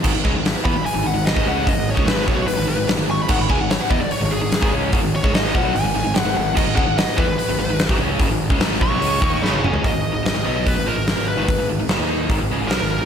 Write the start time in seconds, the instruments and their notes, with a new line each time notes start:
0.03 picked electric bass G#1, overdriven electric guitar G#2 D#3, kick, crash
0.14 picked electric bass G#1, overdriven electric guitar G#2 D#3
0.24 picked electric bass C#2, overdriven electric guitar C#3 G#3, kick
0.35 picked electric bass G#1, overdriven electric guitar G#2 D#3
0.45 snare, open hi-hat
0.65 picked electric bass E2, overdriven electric guitar E3 B3, lead electric guitar B5, kick
0.75 picked electric bass G#1, overdriven electric guitar G#2 D#3
0.83 lead electric guitar G#5, muted overdriven electric guitar stroke, muted picked electric bass stroke, open hi-hat
0.94 picked electric bass G#1, overdriven electric guitar G#2 D#3
1.03 picked electric bass G#1, overdriven electric guitar G#2 D#3, lead electric guitar F#5
1.13 picked electric bass G#1, overdriven electric guitar G#2 D#3
1.26 lead electric guitar D#5, snare, open hi-hat
1.34 picked electric bass G#1, overdriven electric guitar G#2 D#3, kick
1.43 picked electric bass C#2, overdriven electric guitar C#3 G#3 C#4
1.49 lead electric guitar F#5
1.64 picked electric bass F#1, overdriven electric guitar F#2 C#3, kick, open hi-hat
1.69 lead electric guitar D#5
1.74 picked electric bass G#1, overdriven electric guitar G#2 D#3
1.90 overdriven electric guitar C#3, lead electric guitar C#5
1.95 picked electric bass C#2, overdriven electric guitar G#3, kick
2.05 picked electric bass G#1, overdriven electric guitar G#2 D#3 G#3, lead electric guitar B4, snare, open hi-hat
2.25 picked electric bass A#1, overdriven electric guitar A#2 F3, lead electric guitar C#5, kick
2.34 picked electric bass B1, overdriven electric guitar B2 F#3
2.46 picked electric bass G#1, overdriven electric guitar G#2 D#3, lead electric guitar B4, open hi-hat
2.57 picked electric bass G#1, overdriven electric guitar G#2 D#3
2.66 picked electric bass G#1, overdriven electric guitar G#2 D#3, lead electric guitar B4
2.77 picked electric bass G#1, overdriven electric guitar G#2 D#3
2.87 picked electric bass G#1, overdriven electric guitar G#2 D#3, snare, open hi-hat
2.97 picked electric bass G#1, overdriven electric guitar G#2 D#3
3.08 picked electric bass G#1, overdriven electric guitar G#2 D#3, lead electric guitar C#6
3.22 lead electric guitar B5
3.29 picked electric bass G#1, overdriven electric guitar G#2 D#3, lead electric guitar F#5, kick, crash
3.39 picked electric bass G#1, overdriven electric guitar G#2 D#3, lead electric guitar B5
3.49 picked electric bass C#2, overdriven electric guitar C#3 G#3, lead electric guitar G#5, kick
3.58 picked electric bass G#1, overdriven electric guitar G#2 D#3, lead electric guitar F#5
3.70 lead electric guitar C#5, snare, open hi-hat
3.81 lead electric guitar F#5
3.90 picked electric bass E2, overdriven electric guitar E3 B3, lead electric guitar D#5, kick
4.00 picked electric bass G#1, overdriven electric guitar G#2 D#3, lead electric guitar D5
4.11 lead electric guitar C#5, muted picked electric bass stroke, muted overdriven electric guitar stroke, open hi-hat
4.21 picked electric bass G#1, overdriven electric guitar G#2 D#3
4.31 picked electric bass G#1, overdriven electric guitar G#2 D#3, lead electric guitar G#4
4.41 picked electric bass G#1, overdriven electric guitar G#2 D#3
4.52 snare, open hi-hat
4.61 picked electric bass G#1, overdriven electric guitar G#2 D#3, kick
4.70 picked electric bass C#2, overdriven electric guitar C#3 G#3 C#4
4.91 picked electric bass F#1, overdriven electric guitar F#2 C#3, kick, open hi-hat
5.01 picked electric bass G#1, overdriven electric guitar G#2 D#3
5.16 lead electric guitar C#5
5.23 picked electric bass C#2, overdriven electric guitar C#3 G#3, kick
5.32 picked electric bass G#1, overdriven electric guitar G#2 D#3 G#3, lead electric guitar D#5, snare, open hi-hat
5.54 picked electric bass A#1, overdriven electric guitar A#2 F3, lead electric guitar F#5, kick
5.62 picked electric bass B1, overdriven electric guitar B2 F#3
5.73 picked electric bass G#1, overdriven electric guitar G#2 D#3, lead electric guitar G#5, open hi-hat
5.83 picked electric bass G#1, overdriven electric guitar G#2 D#3
5.94 picked electric bass G#1, overdriven electric guitar G#2 D#3
6.04 picked electric bass G#1, overdriven electric guitar G#2 D#3
6.14 picked electric bass G#1, overdriven electric guitar G#2 D#3, snare, open hi-hat
6.18 lead electric guitar F#5
6.25 picked electric bass G#1, overdriven electric guitar G#2 D#3
6.35 picked electric bass G#1, overdriven electric guitar G#2 D#3, lead electric guitar F#5
6.55 picked electric bass G#1, overdriven electric guitar G#2 D#3, lead electric guitar D#5, kick, crash
6.66 picked electric bass G#1, overdriven electric guitar G#2 D#3
6.75 picked electric bass C#2, overdriven electric guitar C#3 G#3, lead electric guitar F#5, kick
6.85 picked electric bass G#1, overdriven electric guitar G#2 D#3
6.98 lead electric guitar D#5, snare, open hi-hat
7.17 picked electric bass E2, overdriven electric guitar E3 B3, lead electric guitar B4, kick
7.28 picked electric bass G#1, overdriven electric guitar G#2 D#3
7.38 muted picked electric bass stroke, muted overdriven electric guitar stroke, open hi-hat
7.48 picked electric bass G#1, overdriven electric guitar G#2 D#3
7.58 picked electric bass G#1, overdriven electric guitar G#2 D#3
7.68 picked electric bass G#1, overdriven electric guitar G#2 D#3
7.79 snare, open hi-hat
7.89 picked electric bass G#1, overdriven electric guitar G#2 D#3, kick
7.98 picked electric bass C#2, overdriven electric guitar C#3 G#3 C#4
8.19 picked electric bass F#1, overdriven electric guitar F#2 C#3, kick, open hi-hat
8.30 picked electric bass G#1, overdriven electric guitar G#2 D#3
8.50 picked electric bass C#2, overdriven electric guitar C#3 G#3, kick
8.59 picked electric bass G#1, overdriven electric guitar G#2 D#3 G#3, snare, open hi-hat
8.80 picked electric bass A#1, overdriven electric guitar A#2 F3, lead electric guitar C#6, kick
8.89 picked electric bass B1, overdriven electric guitar B2 F#3
9.00 picked electric bass C#2, overdriven electric guitar C#3 G#3 C#4, open hi-hat
9.20 picked electric bass D#2, overdriven electric guitar D#3 A#3 D#4, kick
9.41 picked electric bass G#1, overdriven electric guitar G#2 D#3 G#3, lead electric guitar C#5 B5, snare
9.54 high tom
9.62 picked electric bass F#1, overdriven electric guitar F#2 C#3, lead electric guitar G#5, mid tom
9.72 picked electric bass C#2, overdriven electric guitar C#3 G#3, floor tom
9.81 picked electric bass G#1, overdriven electric guitar G#2 D#3, kick, open hi-hat
9.86 lead electric guitar D#5
9.92 picked electric bass G#1, overdriven electric guitar G#2 D#3
10.12 picked electric bass G#1, overdriven electric guitar G#2 D#3
10.23 picked electric bass G#1, overdriven electric guitar G#2 D#3, lead electric guitar D#5, snare, open hi-hat
10.34 picked electric bass G#1, overdriven electric guitar G#2 D#3
10.44 picked electric bass B1, overdriven electric guitar B2 F#3 B3
10.67 lead electric guitar B4, kick, open hi-hat
10.75 picked electric bass G#1, overdriven electric guitar G#2 D#3
10.86 picked electric bass A#1, overdriven electric guitar A#2 F3, lead electric guitar A#4
10.97 picked electric bass G#1, overdriven electric guitar G#2 D#3
11.07 snare, open hi-hat
11.16 picked electric bass G#1, overdriven electric guitar G#2 D#3
11.28 lead electric guitar B4
11.37 picked electric bass G#1, overdriven electric guitar G#2 D#3
11.48 picked electric bass G#1, overdriven electric guitar G#2 D#3, kick, open hi-hat
11.58 picked electric bass G#1, overdriven electric guitar G#2 D#3
11.69 picked electric bass G#1, overdriven electric guitar G#2 D#3
11.79 picked electric bass G#1, overdriven electric guitar G#2 D#3
11.89 picked electric bass F#1, overdriven electric guitar F#2 C#3, snare, open hi-hat
11.99 picked electric bass D#2, overdriven electric guitar D#3 A#3 D#4
12.29 picked electric bass G#1, overdriven electric guitar G#2 D#3, kick, open hi-hat
12.41 picked electric bass G#1, overdriven electric guitar G#2 D#3
12.51 picked electric bass C#2, overdriven electric guitar C#3 G#3
12.61 picked electric bass G#1, overdriven electric guitar G#2 D#3
12.68 picked electric bass B1, overdriven electric guitar B2 F#3, lead electric guitar A#4, snare, open hi-hat
12.82 picked electric bass G#1, overdriven electric guitar G#2 D#3
12.91 lead electric guitar A#4
13.01 picked electric bass G#1, overdriven electric guitar G#2 D#3